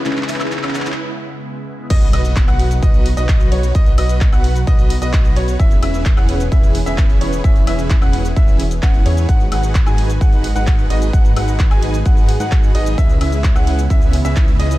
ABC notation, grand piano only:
X:1
M:4/4
L:1/16
Q:1/4=130
K:Bmix
V:1 name="Grand piano"
z16 | d z d2 z f2 z d2 z d3 c2 | d z d2 z f2 z d2 z d3 c2 | e z e2 z f2 z e2 z e3 c2 |
e z e2 z f2 z e2 z2 f2 c2 | f z f2 z g2 z f2 z f3 d2 | f z f2 z g2 z f2 z f3 d2 | e z e2 z f2 z e2 z e3 d2 |]